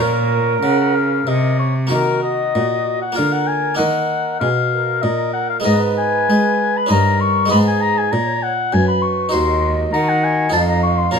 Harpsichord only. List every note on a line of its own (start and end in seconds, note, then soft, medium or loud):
0.00 0.59 A#2 soft
0.00 1.86 C#4 soft
0.00 1.87 F4 soft
0.00 1.87 A#4 soft
0.63 1.24 C#3 medium
1.27 1.88 C3 medium
1.87 3.11 A#3 soft
1.87 3.13 F#4 soft
1.87 3.13 A#4 soft
1.91 2.52 D#3 soft
2.55 3.14 A#2 soft
3.12 3.74 A#3 soft
3.12 3.76 F4 soft
3.12 3.77 A#4 soft
3.17 3.75 D3 soft
3.75 4.37 A#3 soft
3.75 5.60 D#4 soft
3.75 5.61 D#5 soft
3.79 4.37 D#3 soft
4.42 5.00 B2 soft
5.03 5.62 A#2 soft
5.60 6.29 G#3 soft
5.60 6.84 B3 soft
5.60 6.85 D#4 soft
5.64 6.25 G#2 soft
5.64 6.86 D#5 soft
6.30 6.87 G#3 soft
6.86 7.48 C#4 soft
6.86 7.48 D#4 soft
6.86 7.49 D#5 soft
6.91 7.48 G2 soft
7.46 8.07 G#3 soft
7.46 8.08 B3 soft
7.46 8.09 D#4 soft
7.50 8.08 G#2 soft
7.50 9.29 D#5 soft
8.13 8.69 A#2 soft
8.73 9.29 F#2 medium
9.29 10.48 D#4 soft
9.29 10.49 F#4 soft
9.29 10.50 C5 soft
9.34 9.90 D#2 soft
9.94 10.50 D#3 medium
10.49 11.10 D#4 soft
10.49 11.11 F4 soft
10.49 11.12 C5 soft
10.54 11.11 F2 soft
11.11 11.19 C#4 soft
11.11 11.19 F4 soft
11.11 11.19 C#5 soft
11.15 11.19 A#2 soft